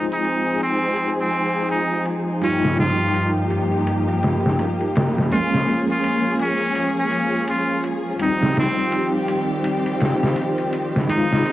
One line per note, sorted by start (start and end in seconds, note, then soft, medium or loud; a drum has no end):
0.00 8.16 F3 medium
0.00 11.52 F3 medium
0.00 2.38 G#3 medium
0.00 2.39 C4 medium
0.00 2.39 D#4 medium
0.00 5.27 D#4 medium
0.00 2.39 F4 medium
0.00 11.52 F4 medium
0.00 2.39 G#4 medium
0.13 0.58 D#4 medium
0.25 closed hi-hat medium
0.61 1.13 C4 medium
0.61 closed hi-hat medium
0.96 closed hi-hat medium
1.21 1.66 C4 medium
1.33 closed hi-hat medium
1.69 2.04 D#4 medium
1.69 closed hi-hat medium
2.06 closed hi-hat medium
2.41 5.28 G2 medium
2.41 5.27 G3 medium
2.41 8.17 A#3 medium
2.41 2.76 C#4 medium
2.41 5.28 D#4 medium
2.41 5.29 F4 medium
2.41 5.29 G4 medium
2.41 closed hi-hat medium
2.65 snare soft
2.78 3.30 F4 medium
2.78 snare soft
2.78 closed hi-hat medium
3.14 closed hi-hat medium
3.50 closed hi-hat medium
3.87 closed hi-hat medium
4.08 closed hi-hat soft
4.23 snare soft
4.23 closed hi-hat medium
4.46 snare soft
4.59 closed hi-hat medium
4.81 closed hi-hat soft
4.96 snare medium
4.96 closed hi-hat medium
5.18 snare soft
5.31 8.17 G#3 medium
5.31 8.17 A#3 medium
5.31 8.18 C#4 medium
5.31 5.83 F4 medium
5.31 8.18 G#4 medium
5.31 closed hi-hat medium
5.54 snare soft
5.68 closed hi-hat medium
5.91 6.36 F4 medium
6.04 closed hi-hat medium
6.39 6.92 C#4 medium
6.39 closed hi-hat medium
6.75 closed hi-hat medium
6.99 7.45 C#4 medium
7.11 closed hi-hat medium
7.48 7.82 F4 medium
7.48 closed hi-hat medium
7.84 closed hi-hat medium
8.19 11.52 D#3 medium
8.19 11.06 G3 medium
8.19 11.52 C4 medium
8.19 11.06 C4 medium
8.19 11.07 D#4 medium
8.19 8.55 D#4 medium
8.19 11.06 G4 medium
8.19 closed hi-hat medium
8.43 snare soft
8.56 9.09 C4 medium
8.56 snare soft
8.56 closed hi-hat medium
8.92 closed hi-hat medium
9.28 closed hi-hat medium
9.64 closed hi-hat medium
9.86 closed hi-hat soft
10.00 snare soft
10.00 closed hi-hat medium
10.23 snare soft
10.36 closed hi-hat medium
10.58 closed hi-hat soft
10.73 closed hi-hat medium
10.96 snare soft
11.08 11.52 G#3 medium
11.08 11.52 D#4 medium
11.08 11.52 F4 medium
11.08 closed hi-hat medium
11.08 shaker medium
11.32 snare soft
11.32 shaker soft
11.45 closed hi-hat medium